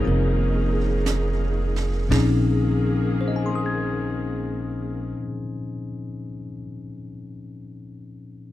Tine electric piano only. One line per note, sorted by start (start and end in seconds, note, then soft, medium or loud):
0.00 2.09 F3 soft
0.00 2.11 A#3 soft
0.00 2.11 D#4 soft
0.00 2.11 G#4 soft
0.00 0.07 A#4 medium
0.00 2.12 C5 medium
0.00 2.12 C#5 medium
0.04 2.09 C4 soft
0.04 2.10 F4 soft
0.04 2.11 A#4 soft
2.09 5.15 A#2 soft
2.09 5.16 F3 soft
2.09 5.17 C4 soft
2.09 5.17 C#4 soft
2.09 5.18 D#4 soft
2.09 5.18 G#4 medium
3.21 6.23 C5 soft
3.28 6.30 D#5 soft
3.36 6.38 G#5 soft
3.46 6.48 C6 soft
3.55 6.57 D#6 soft
3.66 6.68 G#6 soft